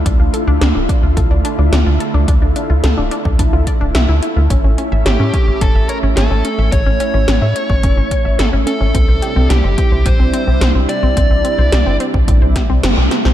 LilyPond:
<<
  \new Staff \with { instrumentName = "Lead electric guitar" } { \time 4/4 \key d \minor \tempo 4 = 108 r1 | r1 | r4 g'4 a'8 bes'8 a'4 | cis''2. a'8 a'8~ |
a'4 g'4 c''4 c''8 d''8~ | d''4. r2 r8 | }
  \new Staff \with { instrumentName = "Synth arpeggio sound" } { \time 4/4 \key d \minor d'16 f'16 a'16 d'16 d'16 d'16 d'16 f'16 a'16 d'16 d'16 d'16 d'16 f'16 a'16 d'16 | d'16 d'16 d'16 f'16 a'16 d'16 d'16 d'16 d'16 f'16 d''16 d'16 e''16 e'16 e'16 f'16 | cis'16 cis'16 cis'16 e''16 cis''16 cis'16 cis'16 cis'16 cis'16 e''16 cis''16 cis'16 cis'16 cis'16 cis'16 e''16 | cis''16 cis'16 cis'16 cis'16 cis'16 e''16 cis''16 cis'16 cis'16 cis'16 cis'16 e''16 cis''16 cis'16 cis'16 cis'16 |
c'16 c''16 g'16 c'16 c'16 c'16 c'16 c''16 g'16 c'16 c'16 c'16 c'16 c''16 g'16 c'16 | c'16 c'16 c'16 c''16 g'16 c'16 c'16 c'16 c'16 c''16 g'16 c'16 c'16 c'16 c'16 c''16 | }
  \new Staff \with { instrumentName = "Analog synth pad" } { \time 4/4 \key d \minor << { <d e' f'>1~ | <d e' f'>1 | cis'1~ | cis'1 |
<c d' e'>1~ | <c d' e'>1 | } \\ { a1~ | a1~ | a1~ | a1 |
g1~ | g1 | } >> }
  \new Staff \with { instrumentName = "Analog synth bass" } { \clef bass \time 4/4 \key d \minor d,16 d,16 r16 d,16 d,16 d,,16 r16 d,16 c,16 d,16 r16 d,16 d,16 d,16 r16 d,16 | d,16 d,16 r16 d,16 d,16 d,,16 r16 d,16 c,16 d,16 r16 d,,16 c,16 d,16 r16 d,16 | a,,16 a,,16 r16 a,,16 a,,16 a,16 r16 a,,16 g,,16 a,,16 r16 a,,16 a,,16 a,,16 r16 a,,16 | a,,16 a,,16 r16 a,,16 a,,16 a,16 r16 a,,16 g,,16 a,,16 r16 a,,16 a,,16 a,,16 r16 a,,16 |
c,16 c,16 r16 c,16 c,16 g,,16 r16 c,16 bes,,16 c,16 r16 c,16 c,16 c,16 r16 c,16 | c,16 c,16 r16 c,16 c,16 g,,16 r16 c,16 bes,,16 c,16 r16 c,16 g,,16 c,16 r16 c,16 | }
  \new DrumStaff \with { instrumentName = "Drums" } \drummode { \time 4/4 <hh bd>8 hh8 <hh sn>8 <hh bd>8 <hh bd>8 hh8 <hh sn>8 hh8 | <hh bd>8 hh8 <hh sn>8 hh16 bd16 <hh bd>8 <hh bd>8 <hh sn>8 hh8 | <hh bd>8 hh8 <hh sn>8 <hh bd>8 <hh bd>8 hh8 <hh sn>8 hh8 | <hh bd>8 hh8 <hh sn>8 hh16 bd16 <hh bd>8 <hh bd>8 <hh sn>8 hh8 |
<hh bd>8 hh8 <hh sn>8 <hh bd>8 <hh bd>8 hh8 <hh sn>8 hh8 | <hh bd>8 hh8 <hh sn>8 hh16 bd16 <hh bd>8 <hh bd sn>8 <hh sn>8 <hh sn>16 sn16 | }
>>